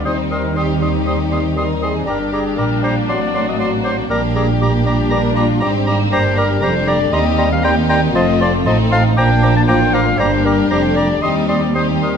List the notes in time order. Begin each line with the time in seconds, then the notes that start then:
Already playing: G3
0.05 D#2 D#3 G3 C4 D#4 C5 C6 D#6
0.31 G3 A#4 C6 D#6
0.56 G3 D#4 G4 C6 D#6
0.82 G3 G4 C6 D#6
1.07 G3 C4 C6 D#6
1.31 G3 A#3 C6 D#6
1.56 G3 C4 D#4 A#4 C6 D#6
1.82 G3 G#4 C6 D#6
2.06 G1 G2 G3 D4 G4 A#4 A#5 D6
2.32 G3 G#4 A#5 D6
2.58 A#1 A#2 G3 A#3 A#4 A#5 D6
2.83 G3 C5 A#5 D6
3.08 A1 A2 F#3 C4 F#4 D5 C6 D6
3.34 F#3 C6 D6
3.49 D#5
3.59 F#3 F#4 D5 C6 D6
3.84 F#3 C5 C6 D6
4.09 A#1 A#2 G3 A#3 D4 G4 A#4 A#5 D6
4.36 G3 G#4 A#5 D6
4.61 G3 A#3 D4 G4 A#5 D6
4.86 G3 D4 A#5 D6
5.11 G3 A#4 A#5 D6
5.36 G3 F4 A#5 D6
5.60 G#1 G#2 G3 C4 G4 A#5 D6
5.87 G3 A#3 A#5 D6
6.12 G1 G2 G3 A#3 D4 G4 C5 A#5 D6
6.36 G3 A#4 A#5 D6
6.62 F1 F2 G3 A3 D4 C5 A#5 D6
6.87 G3 D5 A#5 D6
7.12 D#2 G3 A#3 C4 D#4 G4 D#5 A#5 C6
7.38 G3 A#5 C6
7.53 F5
7.62 G3 A#3 D#4 G4 G5 A#5 C6
7.89 G3 G5 A#5 C6
8.14 F1 F2 F3 A3 C4 F4 D#5 A5 C6
8.40 F3 D5 A5 C6
8.65 A1 A2 F3 C4 D#4 D#5 A5 C6
8.91 F3 F5 A5 C6
9.17 A#1 A#2 F3 A#3 D4 G5 A#5 D6
9.42 F3 A#5 D6
9.57 A5
9.68 A1 A2 F3 D4 F4 G5 A#5 D6
9.94 F3 F5 A#5 D6
10.19 G1 G2 G3 A#3 D4 G4 C5 A#5 D6
10.45 G3 A#4 A#5 D6
10.71 F1 F2 G3 A3 C5 A#5 D6
10.96 G3 D5 A#5 D6
11.21 D#2 G3 C4 D#4 G4 D#5 C6 D#6
11.48 G3 D5 C6 D#6
11.74 G3 C4 D#4 G4 C5 C6 D#6
12.01 G3 A#4 C6 D#6